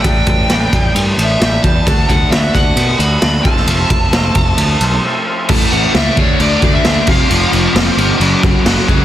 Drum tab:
CC |----------------|----------------|----------------|x-x-x-x-x-x-x-x-|
RD |x-x-x-x-x-x-x-x-|x-x-x-x-x-x-x-x-|x-x-x-x-x-x-----|----------------|
SD |----o-------o---|----o-o-----o--o|----o-----------|----o-------o---|
BD |o-o---o-------o-|o-o---o-------o-|--o---o---------|o-----o---o---o-|

CC |x-x-x-x-x-x-x-x-|
RD |----------------|
SD |----o-------o---|
BD |----------o---o-|